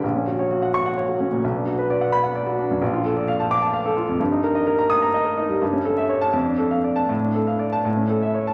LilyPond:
\new Staff \with { instrumentName = "Grand piano" } { \time 6/8 \key fis \phrygian \tempo 4. = 85 << { r4. cis'''8 r4 | r4. b''8 r4 | \key d \minor r4. d'''8 r4 | r4. ees'''8 r4 |
r4 r16 a''16 r4 r16 a''16 | r4 r16 a''16 r4 r16 a''16 | } \\ { ais,,16 cis'16 fis'16 cis''16 fis'16 fis''8 fis''16 cis''16 fis'16 cis'16 ais,16 | b,,16 d'16 fis'16 b'16 d''16 fis''8 fis''16 d''16 fis'16 d'16 fis,16 | bes,,16 f'16 a'16 d''16 f''16 a''8 a''16 f''16 a'16 f'16 f,16 | g,16 ees'16 bes'16 ees''16 bes'16 bes''8 bes''16 ees''16 bes'16 ees'16 g16 |
g,16 cis'16 a'16 e''16 cis''8 f,16 d'16 a'16 f''16 d''8 | a,16 d'16 a'16 f''16 d''8 a,16 cis'16 a'16 e''16 cis''8 | } >> }